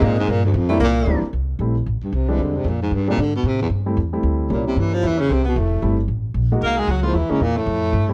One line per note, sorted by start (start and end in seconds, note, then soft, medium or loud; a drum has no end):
0.00 0.27 G#2 medium
0.00 0.26 G#3 medium
0.00 0.26 A#3 medium
0.00 0.15 A#3 medium
0.00 0.26 C4 medium
0.00 0.26 D#4 medium
0.00 0.26 G#4 medium
0.04 0.18 A#2 medium
0.16 0.32 G#2 medium
0.16 0.29 G#3 medium
0.27 0.53 G2 medium
0.27 0.45 A#2 medium
0.27 0.43 A#3 medium
0.43 0.57 D2 medium
0.43 0.56 D3 medium
0.54 0.79 F2 medium
0.54 0.70 F2 medium
0.54 0.69 F3 medium
0.69 0.81 A2 medium
0.69 0.80 G3 medium
0.69 0.80 A3 medium
0.69 0.80 A#3 medium
0.69 0.80 C4 medium
0.69 0.80 D4 medium
0.69 0.80 E4 medium
0.80 1.05 C2 medium
0.80 1.26 A#2 medium
0.80 1.24 A#3 medium
1.06 1.21 D2 medium
1.06 1.21 G3 medium
1.06 1.21 A#3 soft
1.06 1.21 C4 soft
1.06 1.21 D4 soft
1.06 1.21 E4 medium
1.21 muted upright bass stroke soft
1.33 1.58 C2 medium
1.59 1.85 A#1 medium
1.59 1.74 G3 soft
1.59 1.74 A3 soft
1.59 1.74 C4 soft
1.59 1.74 E4 soft
1.86 2.00 A1 medium
2.02 2.16 G2 medium
2.02 muted upright bass stroke soft
2.12 2.38 C2 medium
2.12 2.31 C3 medium
2.28 2.43 E3 medium
2.28 2.63 G3 medium
2.28 2.64 G#3 medium
2.28 2.63 C4 medium
2.28 2.64 D4 medium
2.39 2.64 E2 medium
2.39 2.58 D3 medium
2.57 2.70 C3 medium
2.64 2.90 F2 medium
2.64 2.81 A#2 medium
2.82 2.96 G#2 medium
2.91 3.17 G2 medium
2.91 3.08 G2 medium
3.08 3.23 A#2 medium
3.08 3.17 G3 medium
3.08 3.18 G#3 medium
3.08 3.18 C4 medium
3.08 3.18 D4 medium
3.17 3.43 G#2 medium
3.17 3.35 D3 medium
3.35 3.49 B2 medium
3.43 3.69 A2 medium
3.47 3.61 C3 medium
3.62 3.68 E2 medium
3.70 3.96 G2 medium
3.86 3.96 G3 medium
3.86 3.96 A3 medium
3.86 3.96 C4 medium
3.86 3.97 E4 medium
3.97 4.23 E2 medium
4.13 4.48 G3 medium
4.13 4.48 A3 soft
4.13 4.48 C4 soft
4.13 4.49 E4 medium
4.23 4.49 D2 medium
4.50 4.75 C2 medium
4.50 4.66 A#2 medium
4.50 5.23 G3 medium
4.50 5.23 A#3 soft
4.50 5.23 C#4 soft
4.50 5.23 E4 medium
4.67 4.81 C3 medium
4.76 5.02 G2 medium
4.76 4.95 E3 medium
4.94 5.08 F3 medium
5.03 5.29 E2 medium
5.03 5.22 E3 medium
5.03 5.20 E4 medium
5.18 5.34 C#3 medium
5.18 5.31 C#4 medium
5.29 5.55 C2 medium
5.29 5.47 C3 medium
5.29 5.44 C4 medium
5.45 5.61 B2 medium
5.45 5.58 B3 medium
5.56 5.82 F1 medium
5.56 5.99 A2 medium
5.56 5.98 A3 medium
5.82 6.07 G1 medium
5.82 5.96 G3 medium
5.82 5.96 A3 soft
5.82 5.96 C4 soft
5.82 5.96 E4 medium
6.08 6.34 A1 medium
6.34 6.60 A#1 medium
6.52 6.87 G#3 medium
6.52 6.87 A#3 medium
6.52 6.87 D#4 soft
6.52 6.87 F#4 medium
6.61 6.87 C2 medium
6.61 6.81 A#3 medium
6.61 6.79 A#4 medium
6.77 6.92 G#3 medium
6.77 6.90 G#4 medium
6.87 7.13 C#2 medium
6.87 7.05 F#3 medium
6.87 7.02 F#4 medium
7.03 7.19 F3 medium
7.03 7.13 G#3 medium
7.03 7.14 A#3 soft
7.03 7.13 D#4 soft
7.03 7.14 E4 medium
7.03 7.16 F4 medium
7.14 7.28 D#2 medium
7.14 7.33 E3 medium
7.14 7.32 E4 medium
7.30 7.43 C#3 medium
7.30 7.40 G#3 medium
7.30 7.40 A#3 medium
7.30 7.44 C#4 medium
7.30 7.40 D#4 medium
7.30 7.40 E4 medium
7.30 muted upright bass stroke soft
7.40 7.66 E2 medium
7.40 7.59 A#2 medium
7.40 7.58 A#3 medium
7.56 8.13 A2 medium
7.56 8.13 A3 medium
7.66 7.92 F2 medium
7.93 8.13 G2 medium
8.09 8.13 G3 medium
8.09 8.13 A3 medium
8.09 8.13 C4 medium
8.09 8.13 E4 medium